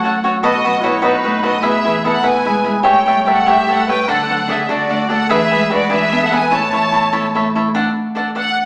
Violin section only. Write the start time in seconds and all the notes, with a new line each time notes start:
Already playing: F#5
0.44 D#5
0.84 C#5
1.05 B4
1.44 D#5
1.65 E5
2.07 F#5
2.27 G#5
2.87 G5
3.29 F#5
3.50 E5
3.71 F#5
3.90 G5
4.08 F#5
4.51 E5
4.62 E5
4.71 D5
5.13 F#5
5.33 E5
5.75 D5
5.93 E5
6.25 F#5
6.34 G#5
6.54 A5
8.38 F#5